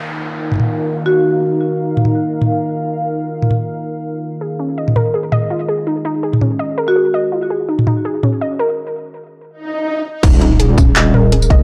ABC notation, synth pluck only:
X:1
M:4/4
L:1/8
Q:"Swing 16ths" 1/4=165
K:Ebm
V:1 name="Synth pluck"
z8 | z8 | z8 | A D e B A e F A |
E E A D e B A e | F A E E A D e B | z8 | E E A D e B A e |]